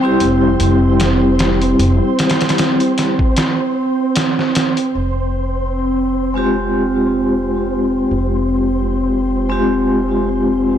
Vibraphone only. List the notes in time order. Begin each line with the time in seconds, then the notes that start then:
0.01 G3 C4 E4 G4
6.34 G#3 C4 F4 G4
9.49 G#3 C4 F4 G4